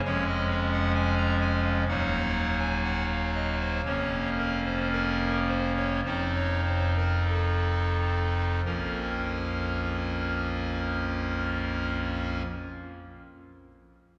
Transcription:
0.05 F1 F2 F3 G#3 C#4 C#5
0.27 D#5
0.49 F5
0.73 F#5
0.95 G#5
1.17 A#5
1.41 G#5
1.64 F5
1.88 D#1 D#2 F#3 A#3 D#4 F#5
2.59 G#5
2.84 F#5
3.10 F5
3.35 D#5
3.60 C5
3.85 F1 F2 F3 A#3 C#4 C#5
4.38 A#4
4.65 C5
4.92 A#4
5.48 C5
5.76 C#5
6.05 F1 F2 F3 C4 D#4 C5
6.35 C#5
6.65 C5
6.96 A#4
7.29 A4
8.65 A#1 F2 F3 A#3 C#4 F4 A#4

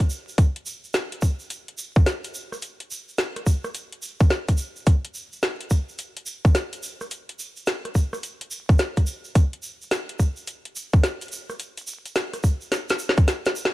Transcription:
0.10 shaker
0.28 shaker
0.38 kick, closed hi-hat, shaker
0.56 closed hi-hat
0.66 shaker
0.84 shaker
0.94 snare, closed hi-hat, shaker
1.12 closed hi-hat
1.22 kick, shaker
1.40 shaker
1.50 closed hi-hat, shaker
1.68 closed hi-hat
1.78 shaker
1.96 kick, shaker
2.06 snare, closed hi-hat, shaker
2.24 closed hi-hat, shaker
2.34 shaker
2.52 cross-stick, shaker
2.62 closed hi-hat, shaker
2.80 closed hi-hat
2.91 shaker
3.08 shaker
3.18 snare, closed hi-hat, shaker
3.36 cross-stick, closed hi-hat
3.46 kick, shaker
3.64 cross-stick, shaker
3.75 closed hi-hat, shaker
3.92 closed hi-hat
4.02 shaker
4.20 kick, shaker
4.30 snare, shaker
4.48 kick, closed hi-hat, shaker
4.57 shaker
4.76 shaker
4.86 kick, closed hi-hat, shaker
5.05 closed hi-hat
5.14 shaker
5.33 shaker
5.42 snare, closed hi-hat, shaker
5.61 closed hi-hat
5.70 kick, shaker
5.89 shaker
5.98 closed hi-hat, shaker
6.17 closed hi-hat
6.26 shaker
6.45 kick, shaker
6.55 snare, closed hi-hat, shaker
6.73 closed hi-hat, shaker
6.83 shaker
7.01 cross-stick, shaker
7.11 closed hi-hat, shaker
7.29 closed hi-hat
7.39 shaker
7.56 shaker
7.66 snare, closed hi-hat, shaker
7.85 cross-stick, closed hi-hat
7.95 kick, shaker
8.13 cross-stick, shaker
8.23 closed hi-hat, shaker
8.41 closed hi-hat
8.51 shaker
8.69 kick, shaker
8.78 snare, closed hi-hat, shaker
8.97 kick, closed hi-hat, shaker
9.07 shaker
9.25 shaker
9.35 kick, closed hi-hat, shaker
9.53 closed hi-hat
9.63 shaker
9.82 shaker
9.91 snare, closed hi-hat, shaker
10.09 closed hi-hat
10.19 kick, shaker
10.36 shaker
10.47 closed hi-hat, shaker
10.65 closed hi-hat
10.76 shaker
10.93 kick, shaker
11.04 snare, closed hi-hat, shaker
11.21 closed hi-hat, shaker
11.28 closed hi-hat, shaker
11.49 cross-stick, shaker
11.60 closed hi-hat, shaker
11.77 closed hi-hat, shaker
11.87 shaker
12.06 closed hi-hat, shaker
12.15 snare, closed hi-hat, shaker
12.33 cross-stick, closed hi-hat, shaker
12.44 kick, shaker
12.61 shaker
12.72 snare, closed hi-hat, shaker
12.89 snare, closed hi-hat, shaker
12.99 shaker
13.09 snare
13.17 kick, closed hi-hat, shaker
13.28 snare, closed hi-hat, shaker
13.45 snare, closed hi-hat, shaker
13.56 shaker
13.65 snare

